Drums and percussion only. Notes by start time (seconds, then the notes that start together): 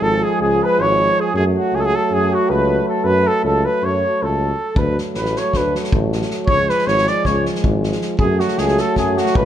4.76 kick
4.98 snare
5.14 snare
5.25 snare
5.36 snare
5.53 kick, snare
5.75 snare
5.84 snare
5.92 kick
6.12 snare
6.22 snare
6.30 snare
6.48 kick
6.69 snare
6.78 snare
6.88 snare
6.97 snare
7.07 snare
7.25 kick, snare
7.45 snare
7.55 snare
7.64 kick
7.83 snare
7.92 snare
8.01 snare
8.19 kick
8.40 snare
8.48 snare
8.58 snare
8.68 snare
8.77 snare
8.96 kick, snare
9.17 snare
9.26 snare
9.35 kick